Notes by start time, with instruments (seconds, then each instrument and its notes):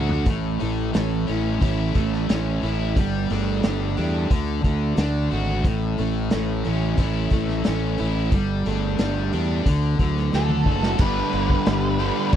Already playing: fingered electric bass D2, overdriven electric guitar D3 A3 D4, steel-string acoustic guitar D4 F#4 A4
0.09 floor tom
0.26 fingered electric bass A1, steel-string acoustic guitar A2 A3 C#4 E4 A4, kick, open hi-hat
0.59 fingered electric bass A1, overdriven electric guitar E3 A3, steel-string acoustic guitar E4 A4, open hi-hat
0.65 steel-string acoustic guitar C#4
0.94 fingered electric bass A1, steel-string acoustic guitar A2 A3 C#4 E4 A4, snare, open hi-hat
1.27 fingered electric bass A1, overdriven electric guitar C#4, steel-string acoustic guitar A4, open hi-hat
1.31 steel-string acoustic guitar C#4 E4
1.61 fingered electric bass A1, steel-string acoustic guitar A3 C#4, overdriven electric guitar E4, kick, open hi-hat
1.66 steel-string acoustic guitar E4 A4
1.95 fingered electric bass A1, overdriven electric guitar A3, kick, open hi-hat
1.99 steel-string acoustic guitar C#4 E4 A4
2.13 snare
2.29 fingered electric bass A1, steel-string acoustic guitar A2 A3 C#4 E4 A4, snare, open hi-hat
2.63 fingered electric bass A1, steel-string acoustic guitar C#4 E4 A4, open hi-hat
2.96 fingered electric bass G1, steel-string acoustic guitar G3 B3 D4 A4, kick, open hi-hat
3.30 fingered electric bass G1, overdriven electric guitar A3, steel-string acoustic guitar B3 A4, open hi-hat
3.34 steel-string acoustic guitar D4
3.63 fingered electric bass G1, steel-string acoustic guitar G3 B3 D4, snare, open hi-hat
3.67 steel-string acoustic guitar A4
3.97 fingered electric bass E2, steel-string acoustic guitar B3 D4 A4, overdriven electric guitar G4, open hi-hat
4.30 fingered electric bass D2, steel-string acoustic guitar D3 D4 F#4 A4, kick, open hi-hat
4.63 fingered electric bass D2, overdriven electric guitar D3 A3, steel-string acoustic guitar D4 F#4 A4, kick, open hi-hat
4.96 fingered electric bass D2, steel-string acoustic guitar D3 D4 F#4 A4, snare, open hi-hat
5.31 fingered electric bass G#1, steel-string acoustic guitar D4 F#4 A4, open hi-hat
5.65 fingered electric bass A1, steel-string acoustic guitar A2 A3 C#4 E4 A4, kick, open hi-hat
5.98 fingered electric bass A1, overdriven electric guitar E3 A3, steel-string acoustic guitar C#4 E4 A4, open hi-hat
6.30 fingered electric bass A1, steel-string acoustic guitar A2 A3 C#4 E4 A4, snare, open hi-hat
6.64 fingered electric bass A1, steel-string acoustic guitar C#4 E4 A4, open hi-hat
6.97 fingered electric bass A1, steel-string acoustic guitar A3 C#4 E4, kick, open hi-hat
7.02 steel-string acoustic guitar A4
7.30 fingered electric bass A1, overdriven electric guitar A3, steel-string acoustic guitar C#4 E4 A4, kick, open hi-hat
7.49 snare
7.64 fingered electric bass A1, steel-string acoustic guitar A2 A3 C#4 E4 A4, snare, open hi-hat
7.97 fingered electric bass A1, steel-string acoustic guitar C#4 E4 A4, open hi-hat
8.31 fingered electric bass G1, steel-string acoustic guitar G3 B3 D4 A4, kick, open hi-hat
8.65 fingered electric bass G1, overdriven electric guitar A3, steel-string acoustic guitar B3 D4 A4, open hi-hat
8.98 fingered electric bass G1, steel-string acoustic guitar G3 B3 D4 A4, snare, open hi-hat
9.32 fingered electric bass E2, steel-string acoustic guitar B3 D4 A4, overdriven electric guitar G4, open hi-hat
9.66 fingered electric bass D2, steel-string acoustic guitar D3 D4 F#4 A4, kick, open hi-hat
9.99 fingered electric bass D2, overdriven electric guitar D3 F#3, steel-string acoustic guitar F#4 A4, kick, open hi-hat
10.03 steel-string acoustic guitar D4
10.17 snare
10.33 fingered electric bass D2, steel-string acoustic guitar D3 D4 F#4 A4, overdriven electric guitar A3, snare
10.49 mid tom
10.66 fingered electric bass F#1, steel-string acoustic guitar D4 F#4 A4, kick
10.83 snare
10.99 fingered electric bass G1, overdriven electric guitar G2 D3 G3 G4, steel-string acoustic guitar G3 B3 D4 A4, tonewheel organ A3 G4 B4, lead electric guitar B4, kick, crash
11.33 fingered electric bass G1, overdriven electric guitar G2 D3 G3, steel-string acoustic guitar B3 D4 A4, crash
11.50 kick
11.66 fingered electric bass G1, overdriven electric guitar G2 D3 G3, steel-string acoustic guitar G3 B3 D4 A4, snare, crash
11.99 overdriven electric guitar G2 D3 G3 G4, steel-string acoustic guitar B3 D4 A4, crash
12.05 overdriven electric guitar G2
12.33 fingered electric bass G1, steel-string acoustic guitar G3, kick, crash